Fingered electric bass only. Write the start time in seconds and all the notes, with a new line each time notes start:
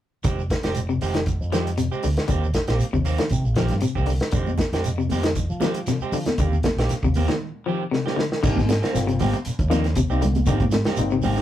0.24 F1
0.64 F1
1.01 F1
1.41 F2
1.92 muted fingered electric bass stroke
2.04 D2
2.29 D#2
2.68 A#1
2.81 muted fingered electric bass stroke
2.93 D#2
3.31 C3
3.45 A#1
3.71 G2
3.96 C2
4.33 F2
4.72 F2
5.10 F2
5.50 F3
6.00 muted fingered electric bass stroke
6.12 F3
6.38 D#2
6.76 A#1
6.89 muted fingered electric bass stroke
7.03 D#2
8.43 G#1
8.57 G#2
8.95 G1
9.20 G#1
9.46 muted fingered electric bass stroke
9.59 D#2
10.10 C2
10.47 G#1
10.60 G#2
10.99 G1
11.23 G#1